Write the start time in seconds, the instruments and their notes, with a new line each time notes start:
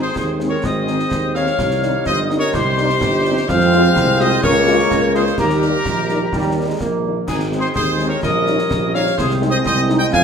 Already playing: trombone section G#3 C4
0.01 woodwind section G#4, trumpet section C5, piccolo C6
0.16 tuba D#2, woodwind section G#4, trumpet section C5, piccolo C6, concert bass drum, snare
0.39 french horn section G#3 C4 D#4, snare
0.49 woodwind section A#4, trumpet section C#5, piccolo C#6
0.64 tuba G#1, woodwind section C5, trumpet section D#5, piccolo D#6, concert bass drum, snare
0.87 french horn section G#3 C4 D#4, snare
0.99 snare
1.11 tuba D#2, concert bass drum, snare
1.35 french horn section G#3 C4 D#4, woodwind section C#5, trumpet section F5, piccolo F6, snare
1.47 snare
1.58 tuba C2, trombone section G3 D#4, concert bass drum, snare, crash
1.71 snare
1.82 french horn section G3 C4 D#4, snare
2.06 tuba G1, woodwind section C5, trumpet section D#5, piccolo D#6, concert bass drum, snare
2.30 french horn section G3 C4 D#4, snare
2.38 woodwind section A#4, trumpet section C#5, piccolo C#6
2.53 tuba C2, woodwind section G4, trumpet section C5, piccolo C6, concert bass drum, snare
2.78 french horn section G3 C4 D#4, snare
2.90 snare
3.01 tuba G1, concert bass drum, snare
3.25 french horn section G3 C4 D#4, snare
3.37 snare
3.48 tuba F2, trombone section G#3 C4, woodwind section C5, trumpet section F5, piccolo F6, concert bass drum, snare, crash
3.61 snare
3.72 french horn section G#3 C4 F4, snare
3.96 tuba C2, concert bass drum, snare
4.19 french horn section G#3 C4 F4, woodwind section C5, trumpet section D#5, piccolo D#6, snare
4.43 tuba C#2, trombone section A#3, woodwind section A#4, trumpet section C#5, piccolo C#6, concert bass drum, snare
4.67 french horn section G#3 A#3 F4, snare
4.79 snare
4.91 tuba C#2, concert bass drum, snare
5.15 french horn section G#3 A#3 F4, woodwind section G#4, trumpet section C5, piccolo C6, snare
5.27 snare
5.38 tuba D#2, trombone section G3 A#3, woodwind section G4, trumpet section A#4, piccolo A#5, concert bass drum, snare, crash
5.50 snare
5.62 french horn section G3 A#3 D#4, snare
5.86 tuba A#1, trombone section D#3, concert bass drum, snare
6.09 french horn section G3 A#3 D#4, snare
6.19 trombone section G3
6.33 tuba D#2, trombone section G3, concert bass drum, snare
6.57 french horn section G3 A#3 D#4
6.66 trombone section G#3
6.80 tuba A#1, trombone section A#3, concert bass drum, snare
7.04 french horn section G3 A#3 D#4
7.27 tuba G#1, trombone section G#3 C4, woodwind section D#4, trumpet section G#4, piccolo G#5, concert bass drum, snare, crash
7.40 snare
7.52 french horn section G#3 C4 D#4, snare
7.59 woodwind section G#4, trumpet section C5, piccolo C6
7.75 tuba D#2, woodwind section G#4, trumpet section C5, piccolo C6, concert bass drum, snare
7.99 french horn section G#3 C4 D#4, snare
8.07 woodwind section A#4, trumpet section C#5, piccolo C#6
8.23 tuba A#1, trombone section G3 C#4, woodwind section A#4, trumpet section D#5, piccolo D#6, concert bass drum, snare
8.47 french horn section G3 C#4 D#4, snare
8.59 snare
8.71 tuba A#1, concert bass drum, snare
8.94 french horn section G3 C#4 D#4, woodwind section C#5, trumpet section F5, piccolo F6, snare
9.07 snare
9.18 tuba C2, trombone section G#3 C4, woodwind section G#4, trumpet section C5, piccolo C6, concert bass drum, snare, crash
9.30 snare
9.42 french horn section G#3 C4 D#4, snare
9.50 woodwind section C5, trumpet section D#5, piccolo D#6
9.65 tuba C2, woodwind section C5, trumpet section D#5, piccolo D#6, concert bass drum, snare
9.89 french horn section G#3 C4 D#4, snare
9.97 woodwind section D#5, trumpet section G5, piccolo G6
10.13 tuba F2, trombone section C#4, woodwind section F5, trumpet section G#5, piccolo G#6, concert bass drum, snare